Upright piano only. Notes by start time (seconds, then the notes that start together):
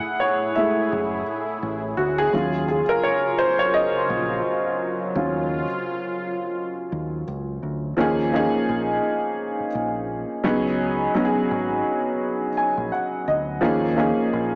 Already playing: F#5
0.20 C#5
0.55 G#3 A3 E4 E5
1.97 F#4
2.18 G#4
2.33 F#3 C#4 F4
2.68 G#4
2.89 A#4
3.03 C#5
3.38 C5
3.59 C#5
3.74 D#5
5.16 F#3 C#4 F4
7.97 F3 A#3 C#4 D#4 G#4
8.32 F3 A#3 C#4 D#4 G#4
10.44 F#3 B3 C#4 D#4 G#4
11.15 F#3 B3 C#4 D#4 F#4
11.25 G#4
12.57 G#5
12.92 F#5
13.28 D#5
13.61 F3 A#3 C#4 D#4 G#4
13.96 F3 A#3 C#4 D#4 G#4